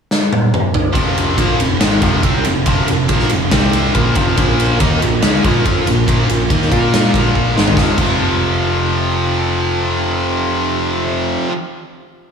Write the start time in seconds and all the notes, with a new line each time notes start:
0.11 snare
0.33 high tom
0.54 mid tom
0.74 floor tom
0.93 F1 F2 C3 F3, kick, ride
1.18 ride
1.38 A#1 A#2 F3 A#3, kick, ride
1.59 F1 F2 C3, ride
1.80 G#1 G#2 D#3 G#3, snare, ride
2.01 F1 F2 C3 F3, kick, ride
2.23 C2 C3 G3 C4, kick, ride
2.44 F1 F2 C3, ride
2.66 F1 F2 C3 F3, kick, ride
2.88 F1 F2 C3, ride
3.08 A#1 A#2 F3 A#3, kick, ride
3.19 snare
3.29 F1 F2 C3, ride
3.51 C2 C3 G3 C4, kick, snare, ride
3.73 ride
3.94 A#1 A#2 F3 A#3, kick, ride
4.15 F1 F2 C3 F3, kick, ride
4.37 A#1 A#2 F3 A#3, kick, ride
4.60 ride
4.80 D#2 D#3 A#3 D#4, kick, ride
5.01 A#1 A#2 F3, ride
5.22 C#2 C#3 G#3 C#4, snare, ride
5.44 A#1 A#2 F3 A#3, kick, ride
5.65 F2 F3 C4 F4, kick, ride
5.87 A#1 A#2 F3, ride
6.08 A#1 A#2 F3 A#3, kick, ride
6.29 A#1 A#2 F3, ride
6.50 D#2 D#3 A#3 D#4, kick, ride
6.62 snare
6.72 A#2 A#3 F4 A#4, kick, ride
6.93 snare, ride
7.14 A#1 A#2 F3 A#3, kick, ride
7.35 kick
7.56 G#1 G#2 D#3 G#3, snare
7.68 floor tom
7.76 F1 F2 C3 F3, kick, snare
7.97 F1 F2 C3, kick, crash
8.02 F3